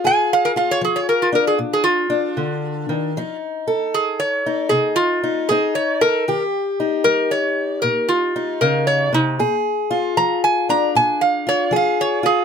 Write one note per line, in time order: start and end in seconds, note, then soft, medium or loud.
0.00 0.56 F4 medium
0.04 0.77 A#2 medium
0.04 3.12 G#4 medium
0.04 0.31 G#5 medium
0.33 0.56 F5 medium
0.45 0.51 A#4 medium
0.56 3.12 F4 medium
0.56 0.73 F5 medium
0.71 0.81 C#5 medium
0.81 1.54 F3 medium
0.81 1.00 G#4 medium
0.96 1.06 C#5 medium
1.09 1.33 A#4 medium
1.22 1.28 F4 medium
1.33 2.09 D4 medium
1.33 1.47 A#4 medium
1.47 1.58 G#4 medium
1.59 2.31 A#2 medium
1.73 1.84 G#4 medium
1.84 3.36 F4 loud
2.10 3.11 D4 medium
2.37 2.88 D3 medium
2.89 3.15 D#3 medium
3.17 3.88 F3 medium
3.17 4.46 D#4 medium
3.68 6.00 A4 medium
3.94 4.19 G#4 medium
4.20 4.69 C#5 medium
4.46 5.22 D#4 medium
4.69 5.43 C3 medium
4.69 4.95 G#4 medium
4.96 5.46 F4 medium
5.24 5.49 D#4 medium
5.49 6.22 C4 medium
5.49 6.24 D#4 medium
5.49 5.74 G#4 medium
5.75 6.00 C#5 medium
6.01 6.24 A4 medium
6.01 6.42 A#4 loud
6.28 6.99 D#3 medium
6.28 9.39 G4 medium
6.80 8.34 D#4 medium
7.04 7.77 G3 medium
7.04 7.29 A#4 loud
7.31 7.81 C#5 medium
7.82 8.55 A#2 medium
7.82 8.07 A#4 medium
8.09 8.59 F4 medium
8.36 9.36 D#4 medium
8.61 9.12 C#3 medium
8.61 8.86 A#4 medium
8.87 9.11 C#5 medium
9.13 9.39 C3 medium
9.13 9.55 D#4 loud
9.39 10.11 A#2 medium
9.39 11.71 G#4 medium
9.91 11.46 F4 medium
10.17 10.89 F3 medium
10.17 10.42 A#5 loud
10.44 10.68 G#5 medium
10.69 12.45 D4 medium
10.69 10.94 A#5 medium
10.95 11.67 A#2 medium
10.95 11.20 G#5 medium
11.21 11.46 F5 medium
11.47 12.23 F4 medium
11.47 11.72 C#5 medium
11.71 12.44 F3 medium
11.71 12.45 G#4 medium
11.76 11.99 F5 medium
12.01 12.24 C#5 medium
12.23 12.45 F4 medium
12.23 12.45 G#4 medium